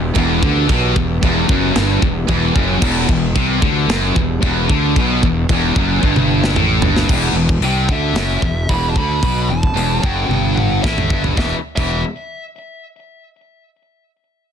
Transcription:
Already playing: fingered electric bass E1, distorted electric guitar E2, string section E3 B3 G4
0.15 fingered electric bass E1, distorted electric guitar E2, kick, china
0.42 fingered electric bass D2, distorted electric guitar D3, kick
0.67 fingered electric bass B1, distorted electric guitar B2, kick, china
0.72 distorted electric guitar B2
0.96 fingered electric bass E1, distorted electric guitar E2, kick
1.23 fingered electric bass E1, distorted electric guitar E2, kick, china
1.49 fingered electric bass F#1, distorted electric guitar F#2, kick
1.75 fingered electric bass G1, distorted electric guitar G2, snare, china
2.02 fingered electric bass E1, distorted electric guitar E2, kick
2.28 fingered electric bass E1, distorted electric guitar E2, kick, china
2.55 fingered electric bass F#1, distorted electric guitar F#2, kick
2.82 fingered electric bass E1, distorted electric guitar E2, kick, crash, china
3.09 fingered electric bass E1, distorted electric guitar E2, kick
3.35 fingered electric bass C2, distorted electric guitar C3, kick, china
3.61 fingered electric bass D2, distorted electric guitar D3, kick
3.88 fingered electric bass F#1, distorted electric guitar F#2, snare, china
4.16 fingered electric bass E1, distorted electric guitar E2, kick
4.42 fingered electric bass E1, distorted electric guitar E2, kick, china
4.68 fingered electric bass D2, distorted electric guitar D3, kick
4.96 fingered electric bass B1, distorted electric guitar B2, kick, china
5.23 fingered electric bass E1, distorted electric guitar E2, kick
5.49 fingered electric bass E1, distorted electric guitar E2, kick, china
5.75 fingered electric bass F#1, distorted electric guitar F#2, kick
6.03 fingered electric bass G1, distorted electric guitar G2, kick
6.16 high tom
6.44 snare
6.54 fingered electric bass A1, distorted electric guitar A2, mid tom
6.80 fingered electric bass G1, distorted electric guitar G2, floor tom
6.96 snare
7.09 fingered electric bass E1, distorted electric guitar E2, kick, crash
7.33 fingered electric bass E1
7.37 distorted electric guitar E2
7.49 kick
7.59 fingered electric bass C2, distorted electric guitar C3, open hi-hat
7.65 lead electric guitar G5
7.89 fingered electric bass D2, distorted electric guitar D3, kick
7.93 lead electric guitar E5
8.13 fingered electric bass F#1, distorted electric guitar F#2, snare, open hi-hat
8.42 fingered electric bass E1, distorted electric guitar E2, kick
8.69 fingered electric bass E1, distorted electric guitar E2, lead electric guitar B5, kick, open hi-hat
8.90 lead electric guitar A5
8.95 fingered electric bass D2, distorted electric guitar D3, lead electric guitar B5, kick
9.23 fingered electric bass B1, distorted electric guitar B2, kick, open hi-hat
9.49 fingered electric bass E1, distorted electric guitar E2, lead electric guitar A5
9.63 kick
9.75 fingered electric bass E1, distorted electric guitar E2, open hi-hat
10.03 fingered electric bass F#1, distorted electric guitar F#2, lead electric guitar G5, kick
10.29 fingered electric bass G1, distorted electric guitar G2, high tom
10.56 lead electric guitar F#5, mid tom
10.81 fingered electric bass A1, distorted electric guitar A2, lead electric guitar E5, kick, snare
10.86 distorted electric guitar A2
10.98 mid tom
11.10 fingered electric bass G1, distorted electric guitar G2, kick
11.24 floor tom
11.37 fingered electric bass E1, distorted electric guitar E2 B2 E3, lead electric guitar E5, kick, snare
11.76 fingered electric bass E1, distorted electric guitar E2 B2 E3, lead electric guitar E5, kick, crash

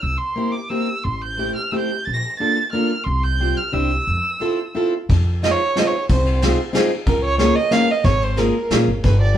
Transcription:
0.02 upright bass C2, violin E6
0.18 violin C6
0.36 steel-string acoustic guitar A#3 C4 E4 G4
0.52 violin D6
0.69 steel-string acoustic guitar A#3 C4 E4 G4, violin E6
1.03 upright bass A1, violin C6
1.21 violin G6
1.38 steel-string acoustic guitar A3 C4 E4 G4
1.56 violin F6
1.71 steel-string acoustic guitar A3 C4 E4 G4, violin E6
1.79 violin G6
2.04 upright bass A#1, violin A6
2.13 violin A#6
2.39 steel-string acoustic guitar A#3 D4 F4 A4, violin A6
2.72 steel-string acoustic guitar A#3 D4 F4 A4, violin F6
3.04 upright bass C2, violin C6
3.23 violin G6
3.40 steel-string acoustic guitar G3 C4 F4 G4
3.57 violin F6
3.72 upright bass C2, steel-string acoustic guitar C4 D4 E4 G4, violin E6
4.07 upright bass F2
4.40 steel-string acoustic guitar C4 E4 F4 A4
4.75 steel-string acoustic guitar C4 E4 F4 A4
5.09 upright bass F2, kick, ride
5.42 steel-string acoustic guitar C4 D#4 F4 G#4, violin D#5, snare, ride
5.51 violin C#5
5.76 steel-string acoustic guitar C4 D#4 F4 G#4, violin D#5, snare, ride
5.87 violin C#5
6.09 upright bass C2, violin C5, kick, ride
6.26 ride
6.42 steel-string acoustic guitar C4 D#4 F4 G#4, snare, ride
6.73 steel-string acoustic guitar C4 D#4 F4 G#4, snare, ride
7.06 upright bass C#2, violin A#4, kick, ride
7.24 violin C#5
7.38 steel-string acoustic guitar A#3 C#4 F4 G#4, violin C#5, snare, ride
7.56 violin D#5
7.71 steel-string acoustic guitar A#3 C#4 F4 G#4, violin F5, snare, ride
7.91 violin D#5
8.04 upright bass G#1, violin C#5, kick, ride
8.21 violin C5, ride
8.36 steel-string acoustic guitar A#3 C#4 F4 G#4, violin A#4, snare, ride
8.70 upright bass A#1, steel-string acoustic guitar A#3 C#4 F4 G#4, snare, ride
8.88 upright bass G#1
9.04 upright bass G1, violin B4, kick, ride
9.22 violin D5
9.34 steel-string acoustic guitar G3

